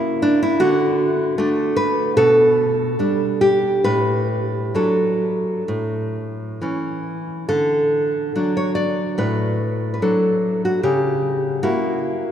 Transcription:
Already playing: A#3 E4
0.22 D4
0.43 E4
0.60 D3 F#4
1.38 A3 D4
1.76 B4
2.17 B2 A4
2.99 G3 D4
3.41 G4
3.84 A2 B4
4.75 F#3 D4 A4
5.68 A2
6.62 E3 C#4
7.49 D3 A4
8.35 F#3 D4
8.57 C#5
8.75 D5
9.18 A2 B4
9.94 B4
10.02 F#3 D4 A4
10.65 F#4
10.83 C#3 G4
11.63 A#3 E4 F#4

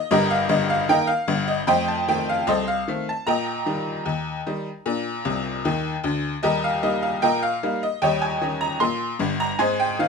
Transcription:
0.11 G1 G2 G4 A#4 D#5
0.31 F5
0.49 G1 G2 D#5
0.70 F5
0.89 D#3 A#3 D#4 A#4 D#5 G5
1.07 F5
1.28 G1 G2
1.48 D#5
1.67 F2 A3 C5 D#5 G5
1.88 A5
2.08 D#3 A3 C4 G5
2.29 F5
2.47 C2 A4 C5 D#5
2.68 F5
2.88 D#3 A3 C4
3.09 A5
3.27 A#2 D#5 G5 A#5
3.66 D#3 G3 D#4
4.06 D#2
4.47 D#3 G3 D#4
4.86 A#2 D4
5.25 C2 C3
5.65 D#2 D#3
6.04 D2 D3
6.43 D#2 G3 G4 A#4 D#5
6.64 F5
6.83 G3 A#3 D#4 D#5
7.03 F5
7.22 A#2 A#4 D#5 G5
7.43 F5
7.63 G3 A#3 D#4
7.83 D#5
8.02 D#2 G3 C#5 D#5 G5
8.22 G#5
8.41 D#3 C#4 D#4
8.61 A#5
8.80 A#2 C6
9.19 G1 G2
9.40 A#5
9.59 G#2 C4 C5 D#5 G#5
9.80 G5
9.99 D#3 C4 D#4 F5

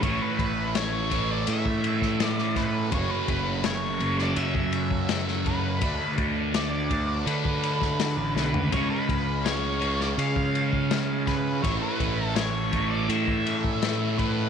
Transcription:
0.01 A1 A2 E3 A3 C#4 E4 C#5, kick, ride
0.22 B4
0.39 A1, kick, ride
0.75 C#5, snare, ride
1.10 E3 A3, kick, ride
1.14 A2
1.31 D5
1.47 A2 E5, ride
1.66 kick
1.84 ride
2.02 kick, snare
2.20 snare, ride
2.27 D5
2.38 snare
2.56 B4, kick, snare, ride
2.91 F#1 F#2 C#3 A3 F#4 C#5, kick, ride
2.95 F#3
3.10 B4
3.28 F#1, kick, ride
3.64 C#5, snare, ride
3.99 C#3 F#3, ride
4.03 F#2
4.19 D5, snare
4.36 F#2 E5, ride
4.55 kick
4.72 ride
4.91 kick
5.09 snare, ride
5.28 snare
5.46 B4, kick, ride
5.81 D2 D3 A3 D4, kick, ride
6.18 D2, kick, ride
6.54 D5, snare, ride
6.90 D3 A3 D4, kick, ride
7.26 D3 B4, ride
7.45 kick
7.63 ride
7.82 kick, snare
8.00 snare, ride
8.17 A1
8.35 B1 B4, snare
8.53 C#2, floor tom
8.71 C#2 C#3 G#3 C#4 F4 C#5, kick, ride
8.90 B4
9.09 C#2, kick, ride
9.45 C#5, snare, ride
9.80 C#3 G#3 C#4, ride
10.00 D5, snare
10.18 C#3 F5, ride
10.36 kick
10.55 ride
10.73 kick
10.91 snare, ride
11.27 B4, kick, snare, ride
11.62 A1 A2 E3 A3 E4 C#5, kick, ride
11.66 A3
11.82 B4
12.00 A1, kick, ride
12.26 A4
12.36 C#5, snare, ride
12.72 A2 E3 A3, kick, ride
12.90 D5
13.09 A2 E5, ride
13.28 kick
13.47 ride
13.64 kick
13.82 snare, ride
14.18 B4, kick, ride

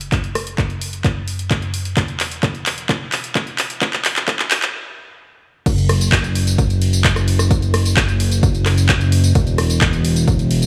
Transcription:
Already playing: F#1
0.01 closed hi-hat
0.12 kick, clap, closed hi-hat
0.24 closed hi-hat
0.35 cross-stick, open hi-hat
0.47 closed hi-hat
0.58 kick, clap, closed hi-hat
0.70 closed hi-hat
0.81 open hi-hat
0.93 closed hi-hat
1.04 kick, clap, closed hi-hat
1.28 open hi-hat
1.39 closed hi-hat
1.51 kick, clap, closed hi-hat
1.62 closed hi-hat
1.74 open hi-hat
1.85 closed hi-hat
1.97 E1, kick, clap, closed hi-hat
2.08 closed hi-hat
2.20 clap, open hi-hat
2.32 closed hi-hat
2.43 kick, clap, closed hi-hat
2.55 closed hi-hat
2.66 clap, open hi-hat
2.78 closed hi-hat
2.89 kick, clap, closed hi-hat
3.12 clap, open hi-hat
3.24 closed hi-hat
3.35 kick, clap, closed hi-hat
3.47 closed hi-hat
3.58 clap, open hi-hat
3.70 closed hi-hat
3.81 kick, clap, closed hi-hat
3.93 clap, closed hi-hat
4.05 clap, open hi-hat
4.16 clap, closed hi-hat
4.28 kick, clap, closed hi-hat
4.39 clap, closed hi-hat
4.51 clap, open hi-hat
4.62 clap, closed hi-hat
5.66 F#1, kick, closed hi-hat, crash, tambourine
5.78 closed hi-hat, tambourine
5.89 cross-stick, open hi-hat, ride
6.01 closed hi-hat, tambourine
6.12 kick, clap, closed hi-hat, tambourine
6.24 closed hi-hat, tambourine
6.35 open hi-hat, ride
6.47 closed hi-hat, tambourine
6.58 kick, closed hi-hat, tambourine
6.70 closed hi-hat, tambourine
6.82 open hi-hat, ride
6.93 closed hi-hat, tambourine
7.04 kick, clap, closed hi-hat, tambourine
7.16 cross-stick, closed hi-hat, tambourine
7.28 open hi-hat, ride
7.39 cross-stick, closed hi-hat, tambourine
7.51 kick, closed hi-hat, tambourine
7.62 closed hi-hat, tambourine
7.74 cross-stick, open hi-hat, ride
7.85 closed hi-hat, tambourine
7.97 kick, clap, closed hi-hat, tambourine
8.08 closed hi-hat, tambourine
8.20 open hi-hat, ride
8.32 closed hi-hat, tambourine
8.43 kick, closed hi-hat, tambourine
8.55 closed hi-hat, tambourine
8.66 cross-stick, clap, open hi-hat, ride
8.78 closed hi-hat, tambourine
8.89 kick, clap, closed hi-hat, tambourine
9.01 closed hi-hat, tambourine
9.12 open hi-hat, ride
9.24 closed hi-hat, tambourine
9.35 E1, kick, closed hi-hat, tambourine
9.47 closed hi-hat, tambourine
9.58 cross-stick, open hi-hat, ride
9.70 closed hi-hat, tambourine
9.81 kick, clap, closed hi-hat, tambourine
9.93 closed hi-hat, tambourine
10.05 open hi-hat, ride
10.16 closed hi-hat, tambourine
10.28 kick, closed hi-hat, tambourine
10.39 closed hi-hat, tambourine
10.51 open hi-hat, ride
10.62 closed hi-hat, tambourine

